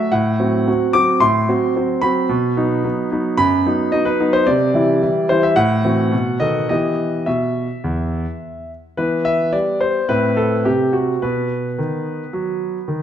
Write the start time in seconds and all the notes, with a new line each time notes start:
Already playing: A3 F#4 E5
0.12 A2 F#5
0.40 F#3 C4 F#4
0.67 F#3 C4 F#4
0.93 F#3 C4 F#4 D6
1.20 A2 C6
1.48 F#3 C4 F#4
1.76 F#3 C4 F#4
2.02 F#3 C4 F#4 B5
2.29 B2
2.56 F#3 B3 D#4
2.84 F#3 B3 D#4
3.11 F#3 B3 D#4
3.38 F#2 B5
3.66 F#3 B3 D#4
3.92 F#3 B3 D#4 D#5
4.05 B4
4.20 F#3 B3 D#4
4.33 C5
4.47 C3 D5
4.74 E3 G3 E4
5.02 E3 G3 E4
5.29 E3 G3 E4 C5
5.43 E5
5.56 A2 F#5
5.85 E3 C4 F#4
6.12 B2
6.40 D#3 B3 A4 D#5
6.69 E3 B3 G4 D#5
7.26 B2 E5
7.84 E2
8.97 E3 B3 B4
9.25 E5
9.53 G3 D5
9.81 C5
10.09 A2 C4 B4
10.37 A4
10.65 C3 G4
10.93 F#4
11.22 B2 B3 B4
11.79 D#3
12.33 F#3
12.88 D#3